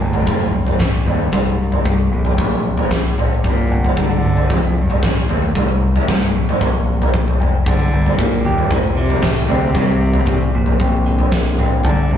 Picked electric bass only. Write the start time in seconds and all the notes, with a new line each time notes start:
0.01 G1
0.27 F1
0.80 A1
1.06 D#2
1.33 C2
1.85 C2
2.12 A#1
2.38 A#1
2.91 A#1
3.19 A1
3.44 G1
3.71 G1
3.97 G1
4.25 G1
4.50 F1
5.02 A1
5.30 D#2
5.55 C2
6.08 C2
6.36 A#1
6.61 A#1
7.14 A#1
7.40 F1
7.66 G1
7.93 G1
8.18 G1
8.45 D#2
8.71 F1
9.23 A1
9.49 D2
9.75 C2
10.27 A1
10.54 A#1
10.80 A#1
11.32 A#1
11.58 A1
11.84 G1
12.12 G1